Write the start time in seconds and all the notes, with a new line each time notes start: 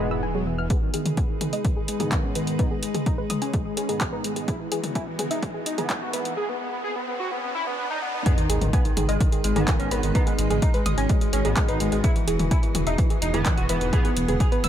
Already playing: E1 E3 B3 F#4 G#4, swell
0.11 G#2 E3 B3 E6
0.23 E3 G#5
0.35 F#3 G#4
0.46 E3
0.58 E3 F6
0.70 G#3 B3 D#4 G#4 B4, kick, closed hi-hat, riser
0.82 D#3
0.94 D#3 G#4, closed hi-hat
1.06 D#3, closed hi-hat, mid tom
1.17 B3 G#5, kick, closed hi-hat
1.29 D#3
1.41 D#3 G#4, closed hi-hat, mid tom
1.53 G#3 D#5, closed hi-hat
1.65 D#3, kick, closed hi-hat
1.76 D#3 G#4
1.88 G#3, closed hi-hat
2.00 G#2 D#3 B3 G#4, closed hi-hat, mid tom
2.12 D#3 G#5, kick, clap, closed hi-hat
2.24 C#4
2.35 G#2 D#3 B3 B4, closed hi-hat
2.47 D#3, closed hi-hat
2.59 G#2 D#3 B3 D#4 B4, kick, closed hi-hat
2.71 G#3 G#4
2.83 G#3, closed hi-hat
2.95 G#3 G#4, closed hi-hat, mid tom
3.06 D#4, kick, closed hi-hat
3.18 G#3 B4
3.30 G#3 D#6, closed hi-hat, mid tom
3.42 C#4 G#5, closed hi-hat
3.53 G#3 G#4, kick, closed hi-hat
3.66 G#3
3.77 C#4 G#4, closed hi-hat
3.89 G#2 D#3 G#3 B3 G#4, closed hi-hat
4.01 kick, clap, closed hi-hat
4.13 D#4 B4
4.24 G#3, closed hi-hat
4.36 G#3 G#4, closed hi-hat
4.48 E3 B3 E4 F#4 G#4, kick, closed hi-hat
4.60 E3
4.72 E3 G#4, closed hi-hat
4.84 E3, closed hi-hat, mid tom
4.95 E4 G#5, kick, closed hi-hat
5.07 E3
5.19 E3 G#4, closed hi-hat, mid tom
5.31 D#4 E5, closed hi-hat
5.42 E3, kick, closed hi-hat
5.54 E3 G#4
5.66 D#4, closed hi-hat
5.78 G#2 E3 B3 G#4, closed hi-hat, mid tom
5.90 G#5, kick, clap, closed hi-hat
6.02 F#4
6.13 G#2 E3 B3 B4, closed hi-hat
6.25 E3, closed hi-hat
6.37 G#4
6.49 B3
6.61 B3
6.72 B3
6.84 G#4
6.96 B3
7.08 B3
7.20 F#4
7.31 B3
7.43 B3
7.55 E4
7.67 B3
7.79 B3
7.90 D#4
8.02 B3
8.14 B3
8.26 G#3 B3 D#4 G#4 B4, kick, closed hi-hat, sub drop
8.38 D#3 D#4, closed hi-hat
8.50 G#1 D#3 D#4 G#4, closed hi-hat
8.61 G#1 D#3 D#4, closed hi-hat, mid tom
8.73 B3 B4 G#5, kick, closed hi-hat
8.85 D#3 D#4, closed hi-hat
8.97 G#1 D#3 D#4 G#4, closed hi-hat, mid tom
9.09 G#1 G#3 G#4 D#5, closed hi-hat
9.20 D#3 D#4, kick, closed hi-hat
9.32 D#3 D#4 G#4, closed hi-hat
9.44 G#1 G#3 G#4, closed hi-hat
9.56 G#1 G#2 D#3 B3 D#4 G#4, closed hi-hat, mid tom
9.68 D#3 G#5, kick, clap, closed hi-hat
9.79 G#1 C#4 C#5, closed hi-hat
9.91 G#1 G#2 D#3 B3 D#4 B4, closed hi-hat
10.03 G#1 D#3 D#4, closed hi-hat
10.15 G#2 D#3 B3 D#4 F#4 B4 D#5, kick, closed hi-hat
10.27 G#3 G#4, closed hi-hat
10.38 G#1 G#3 G#4, closed hi-hat
10.50 G#1 G#3 G#4, closed hi-hat, mid tom
10.62 D#4 D#5, kick, closed hi-hat
10.74 G#3 G#4 B4, closed hi-hat
10.86 G#1 G#3 G#4 D#6, closed hi-hat, mid tom
10.97 G#1 C#4 C#5 G#5, closed hi-hat
11.09 G#3 G#4, kick, closed hi-hat
11.21 G#3 G#4, closed hi-hat
11.33 G#1 C#4 G#4 C#5, closed hi-hat
11.45 G#1 G#2 D#3 G#3 B3 G#4, closed hi-hat
11.57 G#3 G#4, kick, clap, closed hi-hat
11.68 G#1 D#4 B4 D#5, closed hi-hat
11.80 G#1 G#3 G#4, closed hi-hat
11.92 G#1 G#3 G#4, closed hi-hat
12.04 E3 B3 E4 G#4 E5, kick, closed hi-hat
12.16 E3 E4, closed hi-hat
12.27 E1 E3 E4 G#4, closed hi-hat
12.39 E1 E3 E4, closed hi-hat, mid tom
12.51 E4 E5 G#5, kick, closed hi-hat
12.63 E3 E4, closed hi-hat
12.75 E1 E3 E4 G#4, closed hi-hat, mid tom
12.87 E1 D#4 D#5 E5, closed hi-hat
12.98 E3 E4, kick, closed hi-hat
13.10 E3 E4 G#4, closed hi-hat
13.22 E1 D#4 D#5, closed hi-hat
13.34 E1 G#2 E3 B3 E4 G#4, closed hi-hat, mid tom
13.45 E3 E4 G#5, kick, clap, closed hi-hat
13.57 E1 F#4 F#5, closed hi-hat
13.69 E1 G#2 E3 B3 E4 B4, closed hi-hat
13.81 E1 E3 E4, closed hi-hat
13.93 G#2 E3 B3 E4 G#4 B4 G#5, kick, closed hi-hat
14.05 B3 G#4 B4, closed hi-hat
14.16 E1 B3 B4, closed hi-hat
14.28 E1 B3 G#4 B4, closed hi-hat, mid tom
14.40 G#4 G#5, kick, closed hi-hat
14.52 B3 B4, closed hi-hat
14.64 E1 B3 B4 E6, closed hi-hat, mid tom